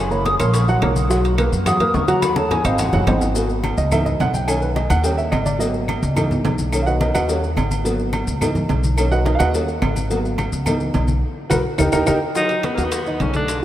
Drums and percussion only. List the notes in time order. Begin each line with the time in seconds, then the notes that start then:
0.11 high bongo, high conga, maracas
0.26 high bongo, high conga, high timbale, low timbale, maracas
0.40 high bongo, high conga, high timbale, claves, maracas
0.54 high bongo, high conga, high timbale, maracas
0.68 high bongo, high conga, maracas
0.82 high bongo, low bongo, high conga, high timbale, low timbale, claves, maracas
0.96 high conga, maracas
1.10 high bongo, high conga, maracas
1.24 high bongo, high conga, high timbale, maracas
1.38 high bongo, high conga, high timbale, low timbale, claves, maracas
1.52 high bongo, high conga, maracas
1.66 high bongo, high conga, low conga, high timbale, claves, maracas
1.80 high bongo, high conga, low conga, high timbale, maracas
1.94 high bongo, low bongo, high conga, low timbale, maracas
2.08 high conga, high timbale, maracas
2.22 high bongo, high conga, high timbale, claves, maracas
2.36 high bongo, high conga, maracas
2.51 high bongo, low conga, high timbale, low timbale, maracas
2.65 high bongo, high timbale, claves, maracas
2.78 high bongo, low conga, high timbale, maracas
2.93 high bongo, low conga, maracas
3.07 high bongo, low bongo, low conga, high timbale, low timbale, claves, maracas
3.21 low conga, maracas
3.35 cowbell, high conga, maracas
3.49 high conga, maracas
3.64 cowbell, high conga, low timbale, low agogo, claves, maracas
3.78 high conga, maracas
3.91 cowbell, high conga, low conga, low agogo, claves, maracas
4.06 high conga, low conga, maracas
4.20 cowbell, high conga, low timbale, low agogo, maracas
4.34 high conga, maracas
4.47 cowbell, high conga, low agogo, claves, maracas
4.62 high conga, maracas
4.76 cowbell, high conga, low timbale, low agogo, maracas
4.90 cowbell, high conga, low agogo, claves, maracas
5.04 cowbell, high conga, maracas
5.18 high conga, maracas
5.32 cowbell, high conga, low timbale, low agogo, claves, maracas
5.46 high conga, low agogo, maracas
5.60 cowbell, high conga, maracas
5.74 high conga, maracas
5.88 cowbell, high conga, low timbale, low agogo, claves, maracas
6.03 high conga, maracas
6.17 cowbell, high conga, low conga, low agogo, claves, maracas
6.31 high conga, low conga, maracas
6.45 cowbell, high conga, low timbale, low agogo, maracas
6.58 high conga, maracas
6.73 cowbell, high conga, low agogo, claves, maracas
6.87 high conga, maracas
7.01 cowbell, high conga, low timbale, low agogo, maracas
7.15 cowbell, high conga, low agogo, claves, maracas
7.29 cowbell, high conga, maracas
7.43 high conga, maracas
7.57 cowbell, high conga, low timbale, low agogo, claves, maracas
7.71 high conga, low agogo, maracas
7.85 cowbell, high conga, maracas
7.99 high conga, maracas
8.13 cowbell, high conga, low timbale, low agogo, claves, maracas
8.27 high conga, maracas
8.41 cowbell, high conga, low conga, low agogo, claves, maracas
8.55 high conga, low conga, maracas
8.69 cowbell, high conga, low timbale, low agogo, maracas
8.84 high conga, maracas
8.98 cowbell, high conga, low agogo, claves, maracas
9.12 high conga, maracas
9.26 cowbell, high conga, low timbale, low agogo, maracas
9.40 cowbell, high conga, low agogo, claves, maracas
9.54 cowbell, high conga, maracas
9.68 high conga, maracas
9.82 cowbell, high conga, low timbale, low agogo, claves, maracas
9.96 high conga, low agogo, maracas
10.11 cowbell, high conga, maracas
10.25 high conga, maracas
10.38 cowbell, high conga, low timbale, low agogo, claves, maracas
10.53 high conga, maracas
10.66 cowbell, high conga, low conga, low agogo, claves, maracas
10.80 high conga, maracas
10.94 cowbell, high conga, low timbale, low agogo, maracas
11.08 high conga, maracas
11.51 cowbell, high conga, high timbale, claves, maracas
11.78 cowbell, high conga, high timbale, claves, maracas
11.92 cowbell, high conga, high timbale, claves, maracas
12.06 cowbell, high conga, high timbale, claves, maracas
12.35 high bongo, high conga, maracas
12.49 high conga, high timbale, maracas
12.63 high bongo, high conga, high timbale, maracas
12.78 high bongo, high timbale, maracas
12.92 high bongo, high conga, high timbale, maracas
13.06 high bongo, high conga, maracas
13.20 high bongo, low bongo, high conga, high timbale, low timbale, maracas
13.34 high bongo, high conga, high timbale, maracas
13.48 high bongo, high conga, high timbale, maracas